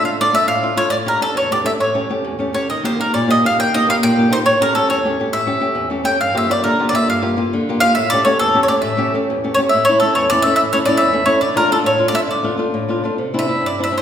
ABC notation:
X:1
M:6/8
L:1/16
Q:3/8=137
K:Dm
V:1 name="Mandolin"
f2 d2 e2 f4 ^c2 | d2 B2 A2 ^c2 d2 e2 | ^c4 z6 c2 | _e2 c2 B2 d2 e2 f2 |
g2 _e2 f2 g4 c2 | ^c2 B2 A2 c6 | e8 z2 g2 | f2 e2 d2 B3 d e2 |
f4 z6 f2 | e2 d2 ^c2 A3 c d2 | e4 z6 ^c2 | e2 ^c2 A2 c2 d2 e2 |
e2 ^c2 d2 e4 c2 | d2 B2 A2 ^c3 d e2 | d8- d2 z2 | [K:C] z2 e4 d2 e2 c2 |]
V:2 name="Nylon-string guitar"
[D,A,DF]2 [A,DF]2 [A,DF]2 A,,2 [A,DF]2 [A,DF]2 | A,,2 [A,DG]2 [A,DG]2 E,,2 [A,DG]2 [A,DG]2 | A,,2 [A,^CG]2 [A,CG]2 E,,2 [A,CG]2 [A,CG]2 | _E,2 [B,_EG]2 [B,EG]2 B,,2 [B,EG]2 [B,EG]2 |
_E,2 [B,_EG]2 [B,EG]2 B,,2 [B,EG]2 [B,EG]2 | A,,2 [A,^CG]2 [A,CG]2 E,,2 [A,CG]2 [A,CG]2 | A,,2 [A,^CG]2 [A,CG]2 E,,2 [A,CG]2 [A,CG]2 | G,,2 [B,FG]2 [B,FG]2 D,2 [B,FG]2 [B,FG]2 |
G,,2 [B,FG]2 [B,FG]2 D,2 [B,FG]2 [B,FG]2 | A,,2 [A,^CG]2 [A,CG]2 E,,2 [A,CG]2 [A,CG]2 | A,,2 [A,^CG]2 [A,CG]2 E,,2 [A,CG]2 [A,CG]2 | A,,2 [A,^CE]2 [A,CE]2 E,,2 [A,CE]2 [A,CE]2 |
A,,2 [A,^CE]2 [A,CE]2 E,,2 [A,CE]2 [A,CE]2 | D,2 [A,DF]2 [A,DF]2 A,,2 [A,DF]2 [A,DF]2 | D,2 [A,DF]2 [A,DF]2 A,,2 [A,DF]2 [A,DF]2 | [K:C] C,2 [CDE]2 [CDE]2 G,,2 [CDE]2 [CDE]2 |]